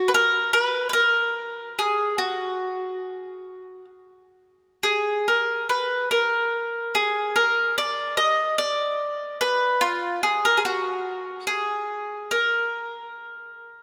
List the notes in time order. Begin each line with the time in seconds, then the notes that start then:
0.08 B4
0.14 A#4
0.53 B4
0.89 A#4 B4
1.79 G#4
2.18 F#4
4.83 G#4
5.28 A#4
5.69 B4
6.11 A#4
6.95 G#4
7.36 A#4
7.78 D5
8.17 D#5
8.58 D5
9.41 B4
9.81 F4
10.23 G#4
10.45 A#4
10.57 G#4
10.65 F#4
11.47 G#4
12.31 A#4